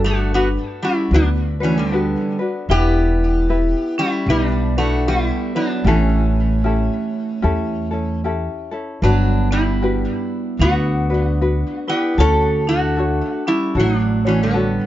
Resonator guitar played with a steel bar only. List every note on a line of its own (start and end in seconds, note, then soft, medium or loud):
0.04 0.32 A3 medium
0.04 0.34 F#4 medium
0.34 0.47 B3 medium
0.34 0.48 F#4 medium
0.83 1.11 G3 medium
0.83 1.15 E4 medium
1.14 1.27 F#3 medium
1.14 1.28 D4 loud
1.63 1.76 E3 medium
1.63 1.78 C#4 medium
1.78 2.36 D3 medium
1.78 2.37 B3 medium
2.71 3.95 B3 medium
2.71 3.94 G4 loud
3.99 4.27 G3 medium
3.99 4.30 E4 loud
4.30 4.75 G3 medium
4.30 4.49 D#4 loud
4.49 4.78 D4 loud
4.78 5.06 A3 medium
4.78 5.08 F#4 medium
5.08 5.53 G3 medium
5.08 5.27 F4 medium
5.27 5.57 E4 medium
5.56 5.84 F#3 medium
5.56 5.87 D4 medium
5.87 8.20 E3 medium
5.87 8.20 C#4 medium
9.03 9.48 F#3 medium
9.03 9.48 D4 medium
9.52 10.57 G3 medium
9.52 10.64 E4 medium
10.61 11.84 B3 medium
10.61 11.89 F#4 loud
11.89 12.17 B3 medium
11.89 12.20 G4 medium
12.20 12.64 C#4 medium
12.20 12.69 A4 loud
12.69 13.42 A3 medium
12.69 13.48 F#4 medium
13.48 13.75 G3 medium
13.48 13.78 E4 medium
13.80 14.23 F#3 medium
13.80 13.98 D#4 loud
13.98 14.27 D4 loud
14.27 14.40 E3 medium
14.27 14.42 C#4 medium
14.43 14.86 D3 medium
14.43 14.86 B3 medium